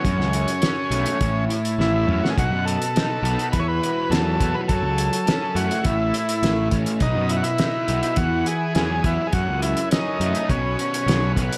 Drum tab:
HH |x-xxx-xxx-xx----|x-xxx-xxx-x-x-x-|x-xxx-xxx-xxx-xx|x-xxx-xxx-x-x-x-|
SD |-o--o-------o--o|----o-------o---|----o-------o---|----o-------o---|
T2 |--------------o-|----------------|----------------|----------------|
BD |o-------o-------|o-------o-----o-|o-------o-----o-|o-------o-----o-|

HH |x-xxx-xxx-xxx-xx|
SD |----o-------o---|
T2 |----------------|
BD |o-------o-----o-|